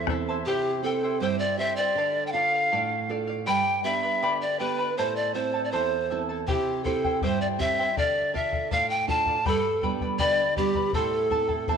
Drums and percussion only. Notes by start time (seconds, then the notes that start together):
0.07 bombo rim, bombo low
6.48 bombo low
6.85 bombo low
7.04 bombo low
7.21 bombo low
7.60 bombo low
7.97 bombo low
8.35 bombo low
8.52 bombo low
8.71 bombo low
9.08 bombo low
9.26 bombo low
9.45 bombo low
9.82 bombo low
10.00 bombo low
10.19 bombo low
10.56 bombo low
10.75 bombo low
10.93 bombo low
11.31 bombo low
11.49 bombo low
11.67 bombo low